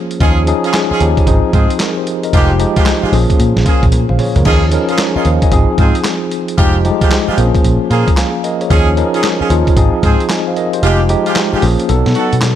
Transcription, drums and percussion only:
0.11 closed hi-hat
0.20 kick, closed hi-hat
0.47 closed hi-hat
0.64 closed hi-hat
0.73 snare, clap, closed hi-hat
1.00 closed hi-hat
1.17 kick, closed hi-hat
1.27 kick, closed hi-hat
1.53 kick, closed hi-hat
1.70 closed hi-hat
1.80 snare, clap, closed hi-hat
2.07 closed hi-hat
2.23 closed hi-hat
2.33 kick, closed hi-hat
2.60 closed hi-hat
2.76 kick, closed hi-hat
2.86 snare, clap, closed hi-hat
3.13 open hi-hat
3.30 kick, closed hi-hat
3.40 closed hi-hat
3.57 snare
3.66 kick, closed hi-hat
3.83 kick, closed hi-hat
3.92 closed hi-hat, high tom
4.09 mid tom
4.19 mid tom, open hi-hat
4.36 closed hi-hat, floor tom
4.45 kick, crash
4.72 closed hi-hat
4.89 closed hi-hat
4.98 snare, clap, closed hi-hat
5.25 closed hi-hat
5.42 kick, closed hi-hat
5.52 kick, closed hi-hat
5.78 kick, closed hi-hat
5.95 closed hi-hat
6.04 snare, clap, closed hi-hat
6.31 closed hi-hat
6.48 closed hi-hat
6.58 kick, closed hi-hat
6.85 closed hi-hat
7.01 kick, closed hi-hat
7.11 snare, clap, closed hi-hat
7.38 closed hi-hat
7.55 kick, closed hi-hat
7.64 closed hi-hat
7.91 closed hi-hat
8.08 kick, closed hi-hat
8.17 snare, clap, closed hi-hat
8.44 closed hi-hat
8.61 closed hi-hat
8.70 kick, closed hi-hat
8.97 closed hi-hat
9.14 closed hi-hat
9.23 snare, clap, closed hi-hat
9.50 closed hi-hat
9.67 kick, closed hi-hat
9.77 kick, closed hi-hat
10.03 kick, closed hi-hat
10.20 closed hi-hat
10.30 snare, clap, closed hi-hat
10.57 closed hi-hat
10.73 closed hi-hat
10.83 closed hi-hat
11.09 closed hi-hat
11.26 closed hi-hat
11.36 snare, clap, closed hi-hat
11.62 open hi-hat
11.80 closed hi-hat
11.89 closed hi-hat
12.06 snare
12.15 closed hi-hat
12.33 closed hi-hat
12.42 snare, clap, closed hi-hat

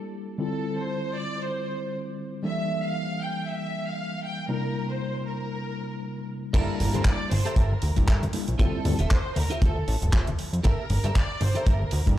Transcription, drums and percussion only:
6.54 kick, closed hi-hat, crash, high conga
6.80 open hi-hat, low conga
6.94 closed hi-hat, high conga
7.05 kick, clap, closed hi-hat
7.31 open hi-hat, high conga
7.46 closed hi-hat
7.56 kick, closed hi-hat
7.72 high conga
7.82 open hi-hat
7.96 kick, closed hi-hat
8.08 kick, clap, closed hi-hat
8.23 closed hi-hat, high conga
8.33 open hi-hat
8.48 closed hi-hat
8.59 kick, closed hi-hat, high conga
8.85 open hi-hat, low conga
8.99 closed hi-hat, high conga
9.11 kick, clap, closed hi-hat
9.36 open hi-hat, high conga
9.50 closed hi-hat
9.62 kick, closed hi-hat
9.77 high conga
9.88 open hi-hat
10.02 closed hi-hat, low conga
10.12 kick, clap, closed hi-hat
10.27 closed hi-hat, high conga
10.39 open hi-hat
10.53 closed hi-hat
10.64 kick, closed hi-hat, high conga
10.90 open hi-hat, low conga
11.04 closed hi-hat, high conga
11.15 kick, clap, closed hi-hat
11.41 open hi-hat, high conga
11.55 closed hi-hat
11.66 kick, closed hi-hat
11.82 high conga
11.91 open hi-hat
12.07 kick, closed hi-hat

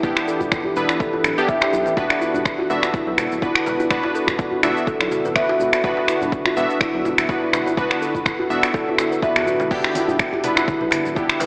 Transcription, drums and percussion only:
0.03 kick, shaker
0.16 finger snap, djembe slap
0.27 djembe tone, shaker
0.41 kick, djembe bass, shaker
0.52 finger snap, kick, djembe tone, shaker
0.64 djembe bass
0.76 shaker
0.89 finger snap, djembe tone, shaker
1.00 kick, shaker
1.13 djembe tone
1.24 finger snap, djembe slap, shaker
1.38 shaker
1.49 kick, djembe tone, shaker
1.61 finger snap, djembe slap
1.73 djembe tone, shaker
1.86 djembe slap, shaker
1.97 kick, djembe tone, shaker
2.10 finger snap, djembe slap
2.21 djembe tone, shaker
2.34 djembe bass, shaker
2.45 finger snap, kick, shaker
2.58 djembe tone, djembe bass
2.70 shaker
2.83 finger snap, djembe tone, shaker
2.94 kick, shaker
3.18 finger snap, djembe slap, djembe tone, shaker
3.32 shaker
3.42 kick, djembe tone, shaker
3.55 finger snap
3.66 djembe slap, shaker
3.80 djembe tone, shaker
3.90 finger snap, kick, shaker
4.03 djembe slap, djembe tone
4.15 shaker
4.27 finger snap, kick, djembe bass, shaker
4.39 kick, djembe tone, shaker
4.51 djembe bass
4.63 finger snap, djembe tone, shaker
4.77 shaker
4.87 kick, shaker
5.01 finger snap, djembe tone
5.12 djembe slap, shaker
5.25 djembe tone, shaker
5.36 finger snap, kick, shaker
5.49 djembe slap
5.60 djembe tone, shaker
5.73 finger snap, djembe slap, shaker
5.84 kick, djembe tone, shaker
5.97 djembe slap
6.08 finger snap, shaker
6.22 djembe tone, djembe bass, shaker
6.32 kick, shaker
6.46 finger snap, djembe tone, djembe bass
6.57 shaker
6.70 shaker
6.80 finger snap, kick, djembe tone, shaker
7.05 djembe slap, djembe tone, shaker
7.18 finger snap, shaker
7.29 kick, shaker
7.41 djembe tone
7.53 finger snap, djembe slap, shaker
7.67 djembe tone, shaker
7.77 kick, shaker
7.91 finger snap, djembe slap
8.02 djembe tone, shaker
8.15 kick, djembe bass, shaker
8.26 finger snap, kick, djembe tone, shaker
8.40 djembe bass
8.51 shaker
8.63 finger snap, djembe tone, shaker
8.74 kick, shaker
8.88 djembe tone
8.98 finger snap, djembe slap, shaker
9.12 shaker
9.22 kick, djembe tone, shaker
9.36 finger snap, djembe slap
9.46 djembe tone, shaker
9.60 djembe slap, shaker
9.71 kick, crash, djembe tone, shaker
9.84 finger snap, djembe slap
9.95 open hi-hat, muted conga, high conga, djembe tone, shaker
10.08 djembe bass, shaker
10.19 finger snap, kick, shaker
10.33 muted conga, djembe tone, djembe bass
10.44 open hi-hat, low conga, shaker
10.56 finger snap, djembe tone, shaker
10.68 kick, muted conga, high conga, shaker
10.81 low conga
10.91 finger snap, open hi-hat, djembe slap, djembe tone, shaker
11.05 muted conga, shaker
11.15 kick, djembe tone, shaker
11.29 finger snap
11.40 open hi-hat, djembe slap, muted conga, high conga, shaker

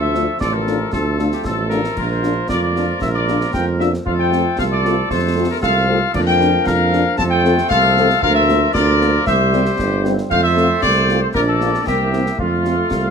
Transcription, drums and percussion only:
0.15 snare
0.41 concert bass drum, snare
0.67 snare
0.93 concert bass drum, snare
1.19 snare
1.32 snare
1.45 concert bass drum, snare
1.71 snare
1.84 snare
1.97 concert bass drum, crash
2.23 snare
2.49 concert bass drum, snare
2.76 snare
3.02 concert bass drum, snare
3.28 snare
3.41 snare
3.54 concert bass drum, snare
3.80 snare
3.94 snare
4.06 concert bass drum
4.32 snare
4.59 concert bass drum, snare
4.85 snare
5.10 concert bass drum, snare
5.63 concert bass drum, snare
6.15 concert bass drum, crash
6.41 snare
6.67 concert bass drum, snare
6.93 snare
7.19 concert bass drum, snare
7.45 snare
7.58 snare
7.71 concert bass drum, snare
7.97 snare
8.10 snare
8.23 concert bass drum
8.49 snare
8.75 concert bass drum, snare
9.01 snare
9.27 concert bass drum, snare
9.53 snare
9.65 snare
9.79 concert bass drum, snare
10.05 snare
10.18 snare
10.31 concert bass drum, crash
10.57 snare
10.83 concert bass drum, snare
11.09 snare
11.35 concert bass drum, snare
11.61 snare
11.74 snare
11.87 concert bass drum, snare
12.13 snare
12.26 snare
12.39 concert bass drum
12.65 snare
12.91 concert bass drum, snare

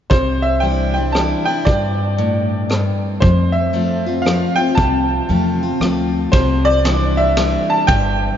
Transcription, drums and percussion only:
0.11 kick
1.15 cross-stick
1.67 kick
2.70 cross-stick
3.22 kick
4.26 cross-stick
4.78 kick
5.81 cross-stick
6.33 kick, ride
6.85 cross-stick, ride
7.37 cross-stick, ride
7.88 kick, ride

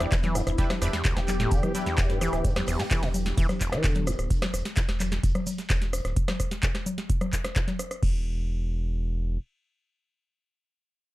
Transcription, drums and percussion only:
0.00 cross-stick, snare, closed hi-hat, shaker
0.12 kick, cross-stick, snare, clap, closed hi-hat, shaker
0.23 snare, closed hi-hat, low conga, shaker
0.35 cross-stick, open hi-hat, shaker
0.47 cross-stick, open hi-hat, shaker
0.58 kick, closed hi-hat, shaker
0.70 cross-stick, snare, closed hi-hat, low conga, shaker
0.82 cross-stick, open hi-hat, shaker
0.93 snare, closed hi-hat, shaker
1.04 kick, snare, clap, closed hi-hat, shaker
1.17 cross-stick, snare, closed hi-hat, shaker
1.28 clap, open hi-hat, low conga, shaker
1.40 snare, closed hi-hat, shaker
1.51 kick, closed hi-hat, shaker
1.63 cross-stick, closed hi-hat, low conga, shaker
1.75 open hi-hat, low conga, shaker
1.86 snare, closed hi-hat, shaker
1.98 kick, cross-stick, snare, clap, closed hi-hat, shaker
2.10 snare, closed hi-hat, shaker
2.21 cross-stick, open hi-hat, shaker
2.33 cross-stick, snare, closed hi-hat, shaker
2.44 kick, closed hi-hat, shaker
2.56 cross-stick, snare, closed hi-hat, low conga, shaker
2.67 cross-stick, open hi-hat, shaker
2.79 snare, closed hi-hat, shaker
2.91 kick, snare, clap, closed hi-hat, shaker
3.03 cross-stick, snare, closed hi-hat, shaker
3.14 open hi-hat, low conga, shaker
3.26 snare, closed hi-hat, shaker
3.37 kick, closed hi-hat, shaker
3.49 cross-stick, snare, closed hi-hat, low conga, shaker
3.60 kick, clap, open hi-hat, shaker
3.72 cross-stick, snare, closed hi-hat, shaker
3.84 kick, cross-stick, snare, clap, closed hi-hat, shaker
3.95 snare, closed hi-hat, low conga, shaker
4.07 cross-stick, open hi-hat, shaker
4.19 cross-stick, open hi-hat, shaker
4.30 kick, closed hi-hat, shaker
4.42 cross-stick, snare, closed hi-hat, low conga, shaker
4.54 cross-stick, open hi-hat, shaker
4.65 snare, closed hi-hat, shaker
4.76 kick, snare, clap, closed hi-hat, shaker
4.89 cross-stick, snare, closed hi-hat, shaker
5.00 clap, open hi-hat, low conga, shaker
5.12 snare, closed hi-hat, shaker
5.23 kick, closed hi-hat, shaker
5.35 cross-stick, closed hi-hat, low conga, shaker
5.46 open hi-hat, low conga, shaker
5.58 snare, closed hi-hat, shaker
5.70 kick, cross-stick, snare, clap, closed hi-hat, shaker
5.82 snare, closed hi-hat, shaker
5.93 cross-stick, open hi-hat, shaker
6.05 cross-stick, snare, closed hi-hat, shaker
6.16 kick, closed hi-hat, shaker
6.28 cross-stick, snare, closed hi-hat, low conga, shaker
6.40 kick, cross-stick, open hi-hat, shaker
6.51 snare, closed hi-hat, shaker
6.63 kick, clap, closed hi-hat, shaker
6.75 cross-stick, snare, closed hi-hat, shaker
6.86 open hi-hat, low conga, shaker
6.98 snare, closed hi-hat, shaker
7.10 kick, closed hi-hat, shaker
7.21 cross-stick, closed hi-hat, low conga, shaker
7.33 kick, clap, open hi-hat, shaker
7.45 cross-stick, snare, closed hi-hat, shaker
7.56 kick, cross-stick, clap, closed hi-hat, shaker
7.68 snare, closed hi-hat, low conga, shaker
7.79 cross-stick, open hi-hat, shaker
7.91 cross-stick, open hi-hat, shaker
8.03 kick, crash

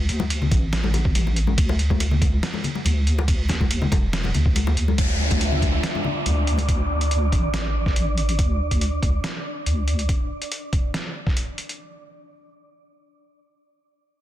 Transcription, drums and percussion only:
0.09 closed hi-hat
0.20 muted conga, high conga
0.30 closed hi-hat, ride
0.42 low conga
0.51 kick, closed hi-hat, muted conga
0.73 snare, closed hi-hat, ride
0.84 high conga
0.94 closed hi-hat, muted conga, low conga
1.05 kick
1.15 closed hi-hat, ride, high conga
1.27 muted conga
1.36 closed hi-hat
1.47 high conga
1.58 kick, closed hi-hat, ride
1.69 muted conga
1.79 closed hi-hat
1.90 kick, high conga
2.00 closed hi-hat, ride, muted conga
2.11 low conga
2.22 kick, closed hi-hat, high conga
2.43 snare, closed hi-hat, ride, muted conga
2.54 high conga
2.64 closed hi-hat, low conga
2.75 muted conga
2.85 closed hi-hat, ride, high conga
3.07 closed hi-hat
3.18 muted conga, high conga
3.28 kick, closed hi-hat, ride
3.49 snare, closed hi-hat, muted conga
3.60 kick, high conga
3.71 closed hi-hat, ride
3.82 low conga
3.92 kick, closed hi-hat, muted conga
4.13 snare, closed hi-hat, ride
4.24 muted conga, high conga
4.34 closed hi-hat, low conga
4.46 kick
4.55 closed hi-hat, ride, high conga
4.67 muted conga
4.77 closed hi-hat
4.88 high conga
4.98 kick, closed hi-hat
5.31 kick, closed hi-hat, high conga
5.41 closed hi-hat
5.52 low conga
5.62 kick, closed hi-hat, high conga
5.83 snare, closed hi-hat
5.95 high conga
6.04 low conga
6.26 closed hi-hat, high conga
6.47 closed hi-hat
6.58 closed hi-hat, high conga
6.68 kick, closed hi-hat
7.01 closed hi-hat
7.11 closed hi-hat
7.32 kick, closed hi-hat
7.54 snare, closed hi-hat
7.86 kick, snare
7.96 closed hi-hat
8.18 closed hi-hat
8.29 closed hi-hat
8.39 kick, closed hi-hat
8.71 kick, closed hi-hat
8.81 closed hi-hat
9.03 kick, closed hi-hat
9.24 snare, closed hi-hat
9.66 closed hi-hat
9.88 closed hi-hat
9.99 closed hi-hat
10.09 kick, closed hi-hat
10.42 closed hi-hat
10.52 closed hi-hat
10.73 kick, closed hi-hat
10.94 snare, closed hi-hat
11.27 kick, snare
11.37 closed hi-hat
11.58 closed hi-hat
11.69 closed hi-hat

